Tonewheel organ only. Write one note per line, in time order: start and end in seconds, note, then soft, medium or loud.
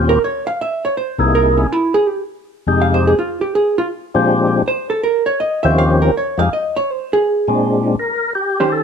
0.00 0.18 D#2 medium
0.00 0.18 A#2 medium
0.00 0.19 C4 medium
0.00 0.19 C#4 medium
0.00 0.19 F4 medium
0.00 0.19 G4 medium
1.18 1.66 C2 medium
1.18 1.66 C3 medium
1.18 1.67 A#3 medium
1.18 1.67 D#4 medium
1.18 1.67 E4 medium
1.18 1.67 G#4 medium
2.67 3.14 F2 medium
2.67 3.15 C3 medium
2.67 3.15 G#3 medium
2.67 3.15 D#4 medium
2.67 3.15 G4 medium
4.15 4.62 A#2 medium
4.15 4.62 F3 medium
4.15 4.62 G#3 medium
4.15 4.62 C4 medium
4.15 4.63 D4 medium
4.15 4.63 G4 medium
5.64 6.11 D#2 medium
5.64 6.11 D#3 medium
5.64 6.11 F3 medium
5.64 6.11 C4 medium
5.64 6.11 C#4 medium
5.64 6.12 G4 medium
6.38 6.49 F2 medium
6.38 6.49 F3 medium
6.38 6.50 G#3 medium
6.38 6.50 D#4 medium
6.38 6.50 G4 medium
7.48 7.95 A#2 medium
7.48 7.96 G#3 medium
7.48 7.96 C4 medium
7.48 7.96 D4 medium
7.99 8.33 A#4 loud
8.35 8.73 G4 medium
8.72 8.83 A4 loud